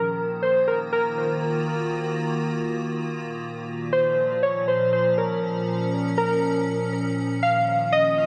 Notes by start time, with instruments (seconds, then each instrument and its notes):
Already playing: ambient pad D#3 A#3, synth keys A#4
0.31 ambient pad F4
0.42 synth keys C5
0.68 synth keys A#4
0.93 synth keys A#4
0.99 ambient pad F#4
3.19 ambient pad A#2
3.35 ambient pad F3
3.93 synth keys C5
4.43 synth keys C#5
4.68 synth keys C5
4.93 synth keys C5
4.99 ambient pad C#4
5.18 synth keys A#4
6.18 synth keys A#4
7.19 ambient pad D#3
7.43 synth keys F5
7.55 ambient pad F4
7.64 ambient pad A#3
7.92 ambient pad F#4, synth keys D#5